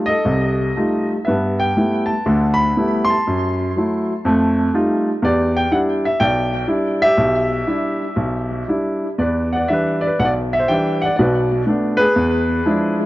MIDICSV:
0, 0, Header, 1, 2, 480
1, 0, Start_track
1, 0, Key_signature, 1, "minor"
1, 0, Tempo, 505051
1, 1204, Time_signature, 4, 2, 24, 8
1, 2628, Tempo, 490196
1, 6468, Tempo, 504626
1, 9348, Tempo, 491803
1, 12610, End_track
2, 0, Start_track
2, 0, Title_t, "Grand piano"
2, 0, Program_c, 0, 0
2, 56, Note_on_c, 0, 75, 84
2, 84, Note_on_c, 0, 69, 61
2, 237, Note_on_c, 0, 48, 59
2, 239, Note_on_c, 0, 36, 64
2, 659, Note_off_c, 0, 48, 0
2, 660, Note_off_c, 0, 36, 0
2, 728, Note_on_c, 0, 57, 42
2, 730, Note_on_c, 0, 63, 34
2, 734, Note_on_c, 0, 55, 42
2, 738, Note_on_c, 0, 65, 45
2, 1003, Note_off_c, 0, 75, 0
2, 1017, Note_off_c, 0, 69, 0
2, 1071, Note_off_c, 0, 57, 0
2, 1071, Note_off_c, 0, 63, 0
2, 1073, Note_off_c, 0, 55, 0
2, 1076, Note_off_c, 0, 65, 0
2, 1185, Note_on_c, 0, 76, 60
2, 1203, Note_on_c, 0, 71, 42
2, 1216, Note_on_c, 0, 59, 54
2, 1223, Note_on_c, 0, 43, 59
2, 1494, Note_off_c, 0, 76, 0
2, 1517, Note_on_c, 0, 79, 82
2, 1623, Note_off_c, 0, 59, 0
2, 1627, Note_off_c, 0, 43, 0
2, 1674, Note_on_c, 0, 55, 42
2, 1681, Note_on_c, 0, 64, 44
2, 1682, Note_on_c, 0, 57, 41
2, 1682, Note_on_c, 0, 59, 33
2, 1956, Note_on_c, 0, 81, 76
2, 1961, Note_off_c, 0, 79, 0
2, 2013, Note_off_c, 0, 55, 0
2, 2017, Note_off_c, 0, 57, 0
2, 2017, Note_off_c, 0, 59, 0
2, 2017, Note_off_c, 0, 64, 0
2, 2114, Note_off_c, 0, 71, 0
2, 2147, Note_on_c, 0, 38, 66
2, 2148, Note_on_c, 0, 50, 67
2, 2412, Note_on_c, 0, 83, 96
2, 2419, Note_off_c, 0, 81, 0
2, 2563, Note_off_c, 0, 38, 0
2, 2564, Note_off_c, 0, 50, 0
2, 2633, Note_on_c, 0, 59, 45
2, 2634, Note_on_c, 0, 55, 47
2, 2641, Note_on_c, 0, 57, 47
2, 2643, Note_on_c, 0, 64, 51
2, 2889, Note_off_c, 0, 83, 0
2, 2903, Note_on_c, 0, 84, 100
2, 2956, Note_on_c, 0, 81, 58
2, 2977, Note_off_c, 0, 55, 0
2, 2977, Note_off_c, 0, 59, 0
2, 2980, Note_off_c, 0, 57, 0
2, 2982, Note_off_c, 0, 64, 0
2, 3125, Note_on_c, 0, 42, 60
2, 3539, Note_off_c, 0, 42, 0
2, 3606, Note_on_c, 0, 54, 42
2, 3616, Note_on_c, 0, 57, 39
2, 3620, Note_on_c, 0, 64, 47
2, 3942, Note_off_c, 0, 54, 0
2, 3947, Note_off_c, 0, 57, 0
2, 3948, Note_off_c, 0, 64, 0
2, 4080, Note_on_c, 0, 41, 73
2, 4094, Note_on_c, 0, 57, 70
2, 4331, Note_off_c, 0, 84, 0
2, 4357, Note_off_c, 0, 81, 0
2, 4492, Note_off_c, 0, 41, 0
2, 4500, Note_off_c, 0, 57, 0
2, 4558, Note_on_c, 0, 57, 46
2, 4559, Note_on_c, 0, 55, 46
2, 4562, Note_on_c, 0, 63, 48
2, 4569, Note_on_c, 0, 65, 59
2, 4895, Note_off_c, 0, 55, 0
2, 4895, Note_off_c, 0, 57, 0
2, 4897, Note_off_c, 0, 63, 0
2, 4900, Note_off_c, 0, 65, 0
2, 5035, Note_on_c, 0, 40, 67
2, 5043, Note_on_c, 0, 67, 55
2, 5058, Note_on_c, 0, 74, 84
2, 5370, Note_on_c, 0, 79, 83
2, 5379, Note_off_c, 0, 74, 0
2, 5450, Note_off_c, 0, 40, 0
2, 5506, Note_off_c, 0, 79, 0
2, 5515, Note_on_c, 0, 55, 42
2, 5515, Note_on_c, 0, 64, 45
2, 5517, Note_on_c, 0, 62, 46
2, 5520, Note_on_c, 0, 78, 80
2, 5592, Note_off_c, 0, 78, 0
2, 5848, Note_on_c, 0, 76, 80
2, 5851, Note_off_c, 0, 55, 0
2, 5851, Note_off_c, 0, 64, 0
2, 5852, Note_off_c, 0, 62, 0
2, 5953, Note_off_c, 0, 67, 0
2, 5990, Note_on_c, 0, 79, 88
2, 5994, Note_on_c, 0, 35, 59
2, 5997, Note_off_c, 0, 76, 0
2, 6010, Note_on_c, 0, 74, 59
2, 6409, Note_off_c, 0, 35, 0
2, 6436, Note_off_c, 0, 79, 0
2, 6453, Note_on_c, 0, 55, 50
2, 6456, Note_on_c, 0, 62, 42
2, 6463, Note_on_c, 0, 64, 55
2, 6785, Note_on_c, 0, 76, 115
2, 6797, Note_off_c, 0, 55, 0
2, 6798, Note_off_c, 0, 62, 0
2, 6801, Note_off_c, 0, 64, 0
2, 6802, Note_on_c, 0, 67, 72
2, 6914, Note_off_c, 0, 74, 0
2, 6933, Note_on_c, 0, 35, 62
2, 7349, Note_off_c, 0, 35, 0
2, 7407, Note_on_c, 0, 64, 50
2, 7408, Note_on_c, 0, 55, 41
2, 7413, Note_on_c, 0, 62, 41
2, 7750, Note_off_c, 0, 64, 0
2, 7751, Note_off_c, 0, 55, 0
2, 7753, Note_off_c, 0, 62, 0
2, 7872, Note_on_c, 0, 35, 57
2, 8304, Note_off_c, 0, 35, 0
2, 8339, Note_off_c, 0, 76, 0
2, 8348, Note_off_c, 0, 67, 0
2, 8362, Note_on_c, 0, 55, 43
2, 8366, Note_on_c, 0, 62, 37
2, 8374, Note_on_c, 0, 64, 52
2, 8718, Note_off_c, 0, 55, 0
2, 8720, Note_off_c, 0, 62, 0
2, 8724, Note_off_c, 0, 64, 0
2, 8842, Note_on_c, 0, 40, 60
2, 8848, Note_on_c, 0, 74, 65
2, 8875, Note_on_c, 0, 71, 47
2, 9169, Note_on_c, 0, 78, 68
2, 9175, Note_off_c, 0, 71, 0
2, 9185, Note_off_c, 0, 74, 0
2, 9199, Note_on_c, 0, 74, 56
2, 9271, Note_off_c, 0, 40, 0
2, 9318, Note_on_c, 0, 76, 70
2, 9322, Note_off_c, 0, 78, 0
2, 9333, Note_on_c, 0, 52, 38
2, 9334, Note_on_c, 0, 62, 48
2, 9338, Note_on_c, 0, 55, 37
2, 9339, Note_off_c, 0, 74, 0
2, 9365, Note_on_c, 0, 71, 50
2, 9637, Note_on_c, 0, 74, 67
2, 9664, Note_off_c, 0, 71, 0
2, 9673, Note_off_c, 0, 76, 0
2, 9685, Note_off_c, 0, 52, 0
2, 9686, Note_off_c, 0, 62, 0
2, 9688, Note_off_c, 0, 55, 0
2, 9697, Note_on_c, 0, 71, 56
2, 9799, Note_off_c, 0, 74, 0
2, 9814, Note_on_c, 0, 35, 56
2, 9817, Note_on_c, 0, 78, 91
2, 9831, Note_off_c, 0, 71, 0
2, 9871, Note_on_c, 0, 74, 73
2, 9893, Note_off_c, 0, 78, 0
2, 9940, Note_off_c, 0, 74, 0
2, 10145, Note_on_c, 0, 76, 78
2, 10207, Note_on_c, 0, 72, 53
2, 10243, Note_off_c, 0, 35, 0
2, 10293, Note_on_c, 0, 79, 80
2, 10296, Note_off_c, 0, 76, 0
2, 10303, Note_on_c, 0, 52, 45
2, 10306, Note_on_c, 0, 55, 42
2, 10306, Note_on_c, 0, 62, 47
2, 10329, Note_off_c, 0, 72, 0
2, 10335, Note_on_c, 0, 76, 60
2, 10607, Note_off_c, 0, 79, 0
2, 10618, Note_on_c, 0, 78, 85
2, 10629, Note_off_c, 0, 76, 0
2, 10651, Note_off_c, 0, 52, 0
2, 10652, Note_off_c, 0, 55, 0
2, 10652, Note_off_c, 0, 62, 0
2, 10655, Note_on_c, 0, 74, 62
2, 10746, Note_off_c, 0, 74, 0
2, 10760, Note_on_c, 0, 74, 69
2, 10770, Note_off_c, 0, 78, 0
2, 10787, Note_on_c, 0, 35, 60
2, 10787, Note_on_c, 0, 47, 62
2, 10806, Note_on_c, 0, 71, 55
2, 11202, Note_off_c, 0, 35, 0
2, 11202, Note_off_c, 0, 47, 0
2, 11216, Note_off_c, 0, 74, 0
2, 11240, Note_off_c, 0, 71, 0
2, 11252, Note_on_c, 0, 59, 42
2, 11261, Note_on_c, 0, 57, 43
2, 11272, Note_on_c, 0, 62, 52
2, 11549, Note_on_c, 0, 71, 98
2, 11573, Note_on_c, 0, 68, 75
2, 11600, Note_off_c, 0, 59, 0
2, 11604, Note_off_c, 0, 57, 0
2, 11610, Note_off_c, 0, 62, 0
2, 11733, Note_on_c, 0, 40, 67
2, 12158, Note_off_c, 0, 40, 0
2, 12218, Note_on_c, 0, 53, 44
2, 12223, Note_on_c, 0, 56, 46
2, 12225, Note_on_c, 0, 64, 52
2, 12233, Note_on_c, 0, 62, 49
2, 12492, Note_off_c, 0, 71, 0
2, 12504, Note_off_c, 0, 68, 0
2, 12564, Note_off_c, 0, 53, 0
2, 12566, Note_off_c, 0, 56, 0
2, 12567, Note_off_c, 0, 64, 0
2, 12571, Note_off_c, 0, 62, 0
2, 12610, End_track
0, 0, End_of_file